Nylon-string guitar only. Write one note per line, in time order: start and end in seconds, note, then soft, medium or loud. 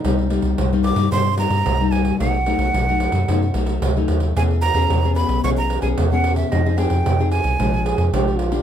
0.04 0.55 C3 medium
0.04 0.27 G3 medium
0.04 0.27 A#3 medium
0.04 0.27 D#4 medium
0.30 0.67 G3 medium
0.30 0.67 A#3 medium
0.30 0.67 D#4 medium
0.58 1.09 G2 medium
0.73 0.95 G3 medium
0.73 0.95 A#3 medium
0.73 0.95 D#4 medium
0.96 1.07 G3 medium
0.96 1.07 A#3 medium
0.96 1.07 D#4 medium
1.12 1.64 C3 medium
1.12 1.28 G3 medium
1.12 1.28 A#3 medium
1.12 1.29 D#4 medium
1.38 1.75 G3 medium
1.38 1.75 A#3 medium
1.38 1.75 D#4 medium
1.66 2.17 G2 medium
1.80 2.16 G3 medium
1.80 2.16 A#3 medium
1.80 2.17 D#4 medium
2.20 2.71 B2 medium
2.20 2.36 F#3 medium
2.20 2.36 A3 medium
2.20 2.36 D#4 medium
2.46 2.83 F#3 medium
2.46 2.83 A3 medium
2.46 2.83 D#4 medium
2.74 3.25 F#2 medium
2.89 3.11 F#3 medium
2.89 3.11 A3 medium
2.89 3.11 D#4 medium
3.13 3.23 F#3 medium
3.13 3.23 A3 medium
3.13 3.23 D#4 medium
3.29 3.80 B2 medium
3.29 3.44 F#3 medium
3.29 3.44 A3 medium
3.29 3.45 D#4 medium
3.54 3.91 F#3 medium
3.54 3.91 A3 medium
3.54 3.91 D#4 medium
3.83 4.34 F#2 medium
3.97 4.32 F#3 medium
3.97 4.32 A3 medium
3.97 4.33 D#4 medium
4.37 4.88 E3 medium
4.37 4.62 B3 medium
4.37 4.62 C#4 medium
4.37 4.62 G#4 medium
4.75 4.98 B3 medium
4.75 4.99 C#4 medium
4.75 4.99 G#4 medium
4.90 5.41 B2 medium
5.04 5.40 B3 medium
5.04 5.40 C#4 medium
5.04 5.40 G#4 medium
5.44 5.95 E3 medium
5.44 5.80 B3 medium
5.44 5.80 C#4 medium
5.44 5.81 G#4 medium
5.82 6.06 B3 medium
5.82 6.06 C#4 medium
5.82 6.06 G#4 medium
5.98 6.49 B2 medium
6.12 6.48 B3 medium
6.12 6.48 C#4 medium
6.12 6.48 G#4 medium
6.51 7.03 F3 medium
6.51 6.61 C4 medium
6.51 6.61 D#4 soft
6.51 6.61 G#4 medium
6.66 6.75 C4 medium
6.66 6.75 D#4 medium
6.66 6.75 G#4 medium
6.78 7.14 C4 medium
6.78 7.15 D#4 medium
6.78 7.15 G#4 medium
7.06 7.57 C3 medium
7.20 7.55 C4 medium
7.20 7.56 D#4 medium
7.20 7.56 G#4 medium
7.59 8.11 A#2 medium
7.59 8.09 F3 medium
7.59 8.09 G#3 medium
7.59 8.09 D4 medium
8.13 8.62 F2 medium
8.13 8.50 F3 medium
8.13 8.50 G#3 medium
8.13 8.50 D4 medium
8.51 8.62 A#3 medium
8.51 8.62 D4 medium
8.51 8.62 G4 medium